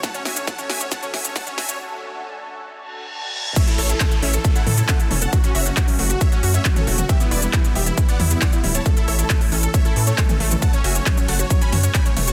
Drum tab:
CC |----------------|----------------|x---------------|----------------|
RD |----------------|----------------|----------------|----------------|
HH |xxoxxxoxxxoxoxox|----------------|xxoxxxoxxxoxxxox|xxoxxooxxxoxxxox|
SH |xx-xxx-xxx-xxx-x|----------------|xx-xxx-xxx-xxx-x|xx-xxx-xxx-xxx-x|
CP |----------------|----------------|----x-------x---|----x-------x---|
SD |o-o-o-o-o-o-o-o-|----------------|----------------|----------------|
T2 |----------o---o-|----------------|----------o---o-|-------------o-o|
BD |o---o---o---o---|----------------|o---o---o---o---|o---o---o---o---|

CC |----------------|----------------|----------------|
RD |----------------|----------------|x-x-x-x-x-x-x-x-|
HH |xxoxxxoxxxoxxxox|xxoxxooxxxoxxxox|xxoxxxoxxxoxxxox|
SH |xx-xxx-xxx-xxx-x|xx-xxx-xxx-xxx-x|xx-xxx-xxx-xxx-x|
CP |----x-------x---|----x-------x---|----x-------x---|
SD |----------------|----------------|----------------|
T2 |----------o---o-|-------------o-o|----------o---o-|
BD |o---o---o---o---|o---o---o---o---|o---o---o---o---|